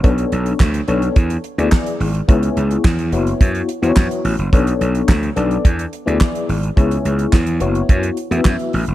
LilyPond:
<<
  \new Staff \with { instrumentName = "FM electric piano" } { \time 4/4 \key b \dorian \tempo 4 = 107 <b d' a' cis''>4 r8 <b d' a' cis''>8 r8. <b e' gis' d''>8. r8 | <b e' gis' cis''>4 r8 <b e' fis' cis''>4 r16 <b e' fis' c'' cis''>8. r8 | <b d' a' cis''>4 r8 <b d' a' d''>8 r8. <b e' gis' d''>8. r8 | <b e' gis' cis''>4 r8 <b e' fis' cis''>4 r16 <a b e' fis' e''>8. r8 | }
  \new Staff \with { instrumentName = "Slap bass" } { \clef bass \time 4/4 \key b \dorian b,,8 b,,8 d,8 b,,8 e,8 r16 d,16 r8 gis,,8 | cis,8 cis,8 e,8 fis,,8 fis,8 r16 e,16 fis,16 r16 a,,16 fis,,16 | b,,8 b,,8 d,8 b,,8 e,8 r16 d,16 r8 gis,,8 | cis,8 cis,8 e,8 fis,,8 fis,8 r16 e,16 fis,16 r16 a,,16 fis,,16 | }
  \new DrumStaff \with { instrumentName = "Drums" } \drummode { \time 4/4 <hh bd>16 hh16 hh16 hh16 <hc bd sn>16 hh16 hh16 hh16 <hh bd>16 hh16 hh16 hh16 <hc bd sn>16 hh16 hho16 hh16 | <hh bd>16 hh16 hh16 hh16 <hc bd sn>16 hh16 hh16 hh16 <hh bd>16 hh16 hh16 hh16 <hc bd sn>16 hh16 hho16 hh16 | <hh bd>16 hh16 hh16 hh16 <hc bd sn>16 hh16 hh16 hh16 <hh bd>16 hh16 hh16 hh16 <hc bd sn>16 hh16 hho16 hh16 | <hh bd>16 hh16 hh16 hh16 <hc bd sn>16 hh16 hh16 hh16 <hh bd>16 hh16 hh16 hh16 <hc bd sn>16 hh16 hho16 hh16 | }
>>